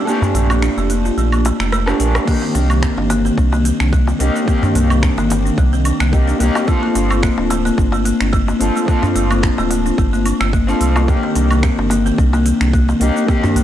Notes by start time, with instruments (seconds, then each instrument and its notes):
0.05 kalimba A#3, clean electric guitar D4 G4 A4, shaker
0.22 kalimba D4, darbuka ka, darbuka dum, shaker
0.35 sub bass A#1, kalimba A3, open hi-hat, darbuka ka, shaker
0.50 kalimba A#3, darbuka tek, low woodblock, shaker
0.62 kalimba D4, finger snap, shaker
0.77 sub bass F1, kalimba A3, darbuka tek, shaker
0.90 kalimba A#3, open hi-hat, shaker
1.05 kalimba F4, darbuka ka, shaker
1.17 sub bass A#1, kalimba A3, shaker
1.32 kalimba A#3, low woodblock, shaker
1.45 kalimba A3, open hi-hat, darbuka tek, shaker
1.60 sub bass F1, kalimba A3, finger snap, shaker
1.72 kalimba A3, cross-stick, shaker
1.86 clean electric guitar D4 G4 A4, kalimba D4, cross-stick, shaker
2.00 sub bass A#1, kalimba A#4, open hi-hat, shaker
2.15 kalimba D4, cross-stick, darbuka ka, low woodblock, shaker
2.25 clean electric guitar D#3 A#3, kalimba A#3, kick, crash, shaker
2.29 clean electric guitar G4
2.42 kalimba C4, darbuka ka
2.55 sub bass C2, kalimba D4, open hi-hat, darbuka ka, shaker
2.70 kalimba A#3, low woodblock, shaker
2.83 kalimba C4, finger snap, kick, shaker
2.97 sub bass G1, kalimba D4, darbuka tek
3.10 kalimba A#3, open hi-hat, darbuka tek, shaker
3.25 kalimba C4, darbuka ka, shaker
3.38 sub bass C2, kalimba D4, kick, darbuka ka, shaker
3.53 kalimba A#3, darbuka tek, shaker
3.65 kalimba C4, open hi-hat, shaker
3.80 sub bass C2, kalimba D4, finger snap, shaker
3.93 kalimba A#3, kick, shaker
4.07 kalimba C4, darbuka tek, shaker
4.19 sub bass C2, clean electric guitar A#3 D#4 G4, kalimba D4, open hi-hat, shaker
4.36 kalimba A#3, shaker
4.46 clean electric guitar D#3 A#3, kalimba C4, kick, shaker
4.50 clean electric guitar G4
4.63 kalimba D4, darbuka ka, darbuka dum, shaker
4.75 sub bass C2, kalimba A#3, open hi-hat, darbuka ka, shaker
4.90 kalimba C4, low woodblock, shaker
5.03 kalimba D4, finger snap, kick, shaker
5.18 sub bass G1, kalimba A#3, darbuka tek, shaker
5.30 kalimba C4, open hi-hat, darbuka tek, shaker
5.46 kalimba D4, shaker
5.58 sub bass C2, kalimba A#3, kick, shaker
5.73 kalimba C4, shaker
5.85 kalimba D4, open hi-hat, low woodblock, shaker
6.00 sub bass C2, kalimba A#3, finger snap, shaker
6.12 clean electric guitar A#3 D#4 G4, kalimba C4, kick, shaker
6.28 kalimba D4, shaker
6.39 sub bass C2, clean electric guitar A#3 D#4 G4, kalimba A#3, open hi-hat, shaker
6.55 kalimba C4, darbuka ka, darbuka tek, low woodblock, shaker
6.66 kalimba A3, clean electric guitar C4 F4 A4, kick, shaker
6.83 kalimba A#3, darbuka ka
6.95 sub bass G1, kalimba D4, open hi-hat, darbuka ka, shaker
7.10 kalimba A3, low woodblock, shaker
7.23 kalimba A#3, finger snap, kick, shaker
7.38 sub bass D1, kalimba D4, darbuka tek
7.50 kalimba A3, open hi-hat, darbuka tek, shaker
7.65 kalimba A#3, darbuka ka, shaker
7.78 sub bass G1, kalimba D4, kick, darbuka ka, shaker
7.92 kalimba A3, darbuka tek, shaker
8.05 kalimba A#3, open hi-hat, shaker
8.20 sub bass G1, kalimba D4, finger snap, shaker
8.33 kalimba A3, kick, shaker
8.48 kalimba A#3, darbuka tek, shaker
8.59 sub bass G1, clean electric guitar C4 F4 A4, kalimba D4, open hi-hat, shaker
8.76 kalimba A3, shaker
8.86 kalimba A#3, clean electric guitar C4 F4, kick, shaker
8.90 clean electric guitar A4
9.02 kalimba D4, darbuka ka, darbuka dum, shaker
9.15 sub bass G1, kalimba A3, open hi-hat, darbuka ka, shaker
9.30 kalimba A#3, low woodblock, shaker
9.43 kalimba D4, finger snap, kick, shaker
9.58 sub bass D1, kalimba A3, darbuka tek, shaker
9.71 kalimba A#3, open hi-hat, darbuka tek, shaker
9.86 kalimba D4, shaker
9.98 sub bass G1, kalimba A3, kick, shaker
10.13 kalimba A#3, shaker
10.26 kalimba D4, open hi-hat, low woodblock, shaker
10.41 sub bass G1, kalimba A3, finger snap, shaker
10.53 kalimba A#3, kick, shaker
10.67 clean electric guitar C4 F4 A4, kalimba D4, shaker
10.81 sub bass C2, kalimba A3, open hi-hat, shaker
10.96 kalimba A#3, darbuka ka, darbuka tek, low woodblock, shaker
11.06 clean electric guitar D#3 A#3, kalimba A#3, kick, shaker
11.10 clean electric guitar G4
11.23 kalimba C4, darbuka ka
11.35 sub bass C2, kalimba D4, open hi-hat, darbuka ka, shaker
11.51 kalimba A#3, low woodblock, shaker
11.63 kalimba C4, finger snap, kick, shaker
11.78 sub bass G1, kalimba D4, darbuka tek
11.90 kalimba A#3, open hi-hat, darbuka tek, shaker
12.06 kalimba C4, darbuka ka, shaker
12.18 sub bass C2, kalimba D4, kick, darbuka ka, shaker
12.33 kalimba A#3, darbuka tek, shaker
12.46 kalimba C4, open hi-hat, shaker
12.61 sub bass C2, kalimba D4, finger snap, shaker
12.73 kalimba A#3, kick, shaker
12.89 kalimba C4, darbuka tek, shaker
13.00 sub bass C2, clean electric guitar A#3 D#4 G4, kalimba D4, open hi-hat, shaker
13.16 kalimba A#3, shaker
13.26 clean electric guitar D#3 A#3 G4, kalimba C4, kick, shaker
13.43 kalimba D4, darbuka ka, darbuka dum, shaker
13.56 sub bass C2, kalimba A#3, open hi-hat, darbuka ka, shaker